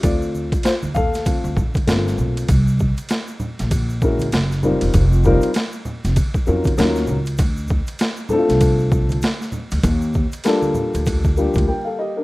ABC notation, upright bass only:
X:1
M:4/4
L:1/16
Q:"Swing 16ths" 1/4=98
K:Dphr
V:1 name="Upright bass" clef=bass
D,,4 z2 E,,2 z D,, D,2 G,,,2 =B,,,2 | ^B,,,3 z4 ^A,,,4- A,,, ^F,,,3 =E,,, | F,,,3 z4 F,,, z2 F,,2 E,,2 _D,,2 | D,,3 z4 C,,4- C,, z3 D,, |
E,,3 z4 D,,4 D,, z4 |]